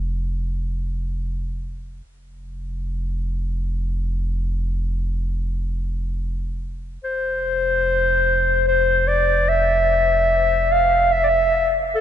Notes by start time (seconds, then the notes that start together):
Already playing: F1
2.05 F1
7.03 F1 C5
8.68 C5
9.08 D5
9.49 E5
10.72 F5
11.13 E5
11.23 D5 E5
11.95 A4